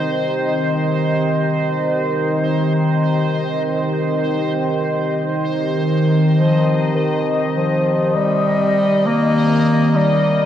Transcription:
Already playing: D#3 C4 G4 C5 D#5
6.34 F3 D#5
6.96 D#3
7.57 F3
8.16 G3
9.07 A#3
9.96 G3

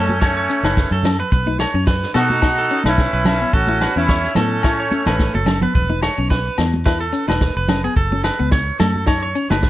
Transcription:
Already playing: F#2 A3 C#4 A4
0.09 high conga, maracas
0.21 C#5, muted clean electric guitar stroke, kick, snare, low agogo, maracas
0.37 C#5
0.50 C#4, maracas
0.63 F#1 D#4 B4, snare, low agogo
0.77 kick, snare, maracas
0.91 F#2 A4
1.03 C#4, snare, low conga, low agogo, maracas
1.20 B4, muted clean electric guitar stroke
1.32 B1 B4, kick, maracas
1.46 D#4, high conga
1.59 C#5, snare, low agogo, maracas
1.74 F#2 C#4
1.87 B4, kick, snare, maracas
2.03 snare
2.14 B2 B3 D#4 F#4 A4, snare, low agogo, maracas
2.30 high conga
2.42 D#4, muted clean electric guitar stroke, kick, snare, low agogo, maracas
2.58 A4
2.70 C#4, maracas
2.84 B1 C#4 D#4 E4 B4, snare, high conga, low agogo
2.98 kick, snare, maracas
3.13 B1 B4
3.25 C#4 E4, snare, low conga, low agogo, maracas
3.41 B3
3.53 A1 C#4 F#4 A4, kick, maracas
3.67 E4, high conga
3.81 B4, snare, low agogo, maracas
3.96 E2 C#4 E4, maracas
4.09 C#5, kick, snare, maracas
4.24 snare
4.35 A2 A3 B3 C#4 A4, snare, low conga, low agogo, maracas
4.52 maracas
4.63 E4 C#5, kick, snare, low agogo, maracas
4.80 C#5
4.91 C#4, high conga, maracas
5.06 A1 A4 B4, snare, high conga, low conga, low agogo, maracas
5.19 kick, snare, high conga, maracas
5.34 F#1 A4, high conga
5.46 C#4, snare, low conga, low agogo, maracas
5.61 B3 B4, low conga, maracas
5.75 E1 B4, kick, maracas
5.90 D#4, high conga
6.02 C#5, snare, low agogo
6.18 B1 C#4
6.30 B4, kick, snare, maracas
6.58 E2 B3, snare, low agogo, maracas
6.73 high conga, maracas
6.86 E4 B4, kick, snare, low agogo, maracas
7.00 A4
7.13 C#4, maracas
7.28 E1 D#4 B4, snare, high conga, low agogo
7.41 kick, snare, maracas
7.56 F1 B4
7.68 C#4, snare, low conga, low agogo, maracas
7.84 B3 G#4
7.96 F#1 A4, kick, maracas
8.12 C#4, high conga
8.24 B4, snare, low agogo, maracas
8.39 C#2 B3
8.51 C#5, kick, snare, maracas
8.79 F#2 A3 A4, snare, low conga, low agogo, maracas
8.95 high conga, maracas
9.06 D#4 C#5, kick, snare, low agogo, maracas
9.23 C#5
9.35 C#4, maracas
9.50 F#1 D#4 B4, snare, high conga, low agogo
9.63 kick, snare, maracas

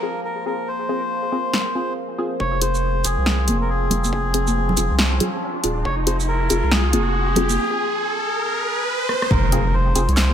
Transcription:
Already playing: F3 A#3 A#4 C5
0.03 C4 F4 G#4
0.25 A#4
0.46 C4 F4 G#4 A#4
0.68 C5
0.89 C4 F4 G#4
1.32 C4 F4 G#4
1.54 snare
1.75 C4 F4 G#4
2.18 C4 F4 G#4
2.40 F1 F3 C4 G#4 C#5, kick, riser
2.61 C4 F4 G#4 C5, closed hi-hat
2.75 shaker
3.04 F1 C4 F4 G#4, closed hi-hat, shaker
3.18 C2
3.26 snare
3.48 F1 C4 F4 G#4, closed hi-hat, high conga
3.61 A#4
3.70 G#4
3.90 F1 C4 F4 G#4, closed hi-hat, high conga, low conga
4.04 high conga, shaker
4.13 G#4, kick
4.34 C4 F4 G#4, closed hi-hat
4.47 high conga, shaker
4.69 low conga
4.77 F1 C4 F4 G#4, closed hi-hat, shaker
4.91 C2
4.99 snare
5.20 C4 F4 G#4, closed hi-hat, low conga
5.64 D#1 C4 F4 G#4, kick, closed hi-hat
5.85 F1 C#5, kick
6.07 C4 F4 G#4 C5, closed hi-hat
6.20 shaker
6.28 A#4
6.50 F1 C4 F4 G#4, closed hi-hat, shaker
6.63 C2
6.71 G#4, snare
6.93 F1 C4 F4 G#4, closed hi-hat, high conga
7.36 F1 C4 F4 G#4, closed hi-hat, high conga, low conga
7.49 high conga, shaker
9.09 cross-stick
9.22 cross-stick
9.31 F1 C3 F3 F4 A#4, kick, impact
9.52 C4 F4 G#4, closed hi-hat
9.74 C5
9.95 F1 C4 F4 G#4, closed hi-hat, shaker
10.08 C2 C#5, closed hi-hat
10.17 C5, snare, clap

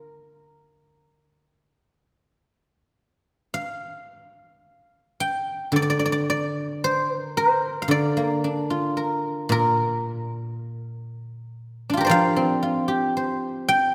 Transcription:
Already playing: D3 D4 F4 A#4 D5
3.54 F5
5.20 G5
5.72 D3
5.76 D5
5.82 D5
5.90 D5
5.99 D5
6.06 D5
6.12 D5
6.30 D5
6.84 C5
7.16 A#4
7.37 C5
7.82 F5
7.88 D3 D5
8.17 A#3
8.44 D4
8.70 F4
8.97 A#4
9.49 A#2 A#4
11.90 D4 F4
11.97 G4 A#4
12.05 C5 D5
12.09 F3 F5
12.36 C4
12.63 F4
12.88 G4
13.17 C5
13.69 G5

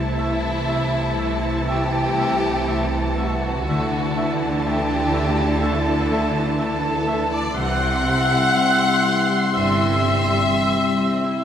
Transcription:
Already playing: C2 C3 E3 A3 E4 E5 A5
0.17 A3 E5
0.67 A3 C4 E5
1.18 A3 E5
1.68 C3 A3 G4 E5 G5
2.18 A3 C4 E5
2.68 A3 E5
3.18 A3 C4 F#4 E5 F#5
3.67 D2 D3 E3 A3 E4 E5 A5
4.17 A3 E5
4.66 A3 D4 G4 E5 G5
5.13 A3 E5
5.62 A3 D4 A4 E5 A5
6.11 A3 E5
6.59 A3 D4 A4 E5 A5
7.07 A3 E5
7.32 D5 D6
7.56 C2 C3 E3 G3 C4 E4 E5 F#5 C6 F#6
7.81 G3
8.06 C4
8.31 E4
8.55 G3 C4
8.81 G3
9.05 E3 C4
9.29 G3
9.53 G1 G2 G3 C4 E5 E6
9.79 E4
10.03 C4
10.28 G3
10.52 E3 G3
10.77 G3
11.01 C4
11.26 E4

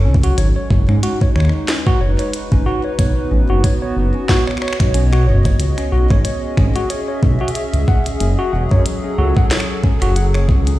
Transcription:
Already playing: F#3 C#4 A4
0.05 C#2 C#4
0.14 kick
0.24 F#4, closed hi-hat
0.38 G#1 G#3 C#5, closed hi-hat
0.56 C#5
0.70 F#1 D#4, kick
0.89 G#2 C#4, finger snap
1.03 F#4, closed hi-hat
1.21 C#5, kick
1.36 D#2 C#5, finger snap
1.40 finger snap
1.45 finger snap
1.49 finger snap
1.57 B4
1.68 C#4, snare, closed hi-hat
1.87 F#4, kick
2.01 F#1 C#5
2.19 C#5, closed hi-hat
2.34 closed hi-hat
2.52 G#1 C#4, kick
2.66 F#4
2.84 C#5
2.99 B1 B3 C#5, kick, closed hi-hat
3.14 F#4
3.31 A1 C#4
3.50 F#1 F#4
3.64 C#5, kick, closed hi-hat
3.82 C#5
3.97 F#1
4.12 C#4 C#5
4.18 D#5
4.29 F#4, kick, snare
4.47 C#5, finger snap
4.51 finger snap
4.57 finger snap
4.62 C#5, finger snap
4.68 finger snap
4.73 finger snap
4.80 B1, finger snap, kick, closed hi-hat
4.94 C#4, closed hi-hat
5.13 F#4, finger snap
5.27 F#1 C#5
5.45 C#5, kick, closed hi-hat
5.60 C#2 C#4, closed hi-hat
5.78 C#4, finger snap, closed hi-hat
5.92 B1 F#4
6.08 G#1 G#4 C#5, finger snap, kick
6.25 C#5, closed hi-hat
6.57 G#1 C#4, finger snap, kick
6.76 F#4 E5, closed hi-hat
6.90 C#5, closed hi-hat
7.08 C#5
7.23 B1, kick
7.41 F#4
7.48 closed hi-hat
7.55 G#4, closed hi-hat
7.74 C#2, closed hi-hat
7.88 F#5, kick
8.06 closed hi-hat
8.20 F#1 F#3 C#4, closed hi-hat
8.39 F#4
8.53 E1 F#5
8.71 F#2 A4 C#5, kick
8.86 closed hi-hat
9.04 C#4
9.18 C#2 F#4
9.37 F#5, kick
9.51 C#5, snare, closed hi-hat
9.60 finger snap
9.84 C#4, kick
10.02 F#1 F#4, finger snap, closed hi-hat
10.16 F#5, closed hi-hat
10.34 C#5, finger snap
10.49 C#2, kick
10.67 C#4, closed hi-hat

